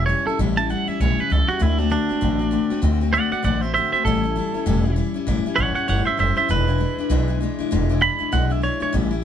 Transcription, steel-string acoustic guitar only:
0.07 E3 G3 C#4 E4
0.28 G3 C#4 E4
0.39 A2 E3 G3 C#4 E4
0.57 G3 C#4 E4
0.70 E3 G3 C#4 E4
0.88 G3 C#4 E4
1.01 A2 E3 G3 C#4 E4
1.18 G3 C#4 E4
1.30 E3 G3 C#4 E4
1.49 G3 C#4 E4
1.60 D3 A3 C4 F#4
1.78 A3 C4 F#4
1.90 D3 A3 C4 F#4
2.09 A3 C4 F#4
2.21 D3 A3 C4 F#4
2.39 A3 C4 F#4
2.51 D3 A3 C4 F#4
2.70 A3 C4 F#4
2.82 D3 A3 C4 F#4
3.01 A3 C4 F#4
3.14 D3 A3 C4 F#4
3.32 A3 C4 F#4
3.43 D3 A3 C4 F#4
3.62 A3 C4 F#4
3.75 D3 A3 C4 F#4
3.94 A3 C4 F#4
4.06 A2 E3 G3 C#4 E4
4.24 G3 C#4 E4
4.36 E3 G3 C#4 E4
4.54 G3 C#4 E4
4.66 A2 E3 G3 C#4 E4
4.83 G3 C#4 E4
4.96 E3 G3 C#4 E4
5.14 G3 C#4 E4
5.27 A2 E3 G3 C#4 E4
5.46 G3 C#4 E4
5.56 E3 G3 C#4
5.75 G3 C#4 E4
5.88 A2 E3 G3 C#4 E4
6.06 G3 C#4 E4
6.17 E3 G3 C#4 E4
6.36 G3 C#4 E4
6.49 E2 B2 E3 G#3 D4 E4
6.67 E3 G#3 D4 E4
6.78 E3 G#3 D4 E4
6.99 E3 G#3 D4 E4
7.10 E2 B2 E3 G#3 D4 E4
7.28 E3 G#3 D4 E4
7.41 E3 G#3 D4 E4
7.59 E3 G#3 D4 E4
7.71 E2 B2 E3 G#3 D4 E4
7.89 E3 G#3 D4 E4
8.00 E3 G#3 D4 E4
8.19 E3 G#3 D4 E4
8.32 E2 B2 E3 G#3 D4 E4
8.50 E3 G#3 D4 E4
8.62 E3 G#3 D4 E4
8.80 E3 G#3 D4 E4
8.93 A2 E3 G3 C#4 E4
9.11 G3 C#4 E4

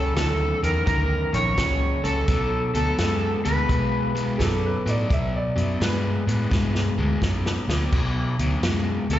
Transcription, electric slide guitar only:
Already playing: A4
0.17 A4
0.64 A#4
0.87 A#4
1.34 C#5
2.04 A4
2.75 A4
3.45 B4
9.13 B4

